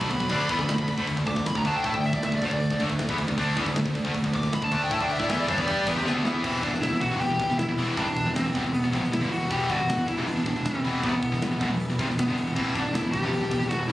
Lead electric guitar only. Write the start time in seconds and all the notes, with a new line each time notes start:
Already playing: B5
1.28 D6
1.48 B5
1.58 A#5
1.67 A5
1.76 G5
1.86 A5
1.95 G5
2.06 E5
2.16 D5
2.26 E5
2.36 D5
2.46 D5
4.36 D6
4.55 B5
4.64 A5
4.74 A5
4.83 G5
4.94 A5
5.03 G5
5.12 E5
5.21 D5
5.31 E5
5.40 D5
5.50 D5
6.06 B3
6.25 B3
6.43 C4
6.62 D4
6.81 E4
7.01 F#4
7.20 G4
7.59 E4
7.97 D4
8.35 C4
8.73 B3
9.12 E4
9.31 F#4
9.51 G4
9.70 F#4
10.08 E4
10.26 D4
10.65 C4
11.02 B3
12.19 B3
12.55 C4
12.75 D4
12.94 E4
13.12 G4
13.69 F#4
13.87 E4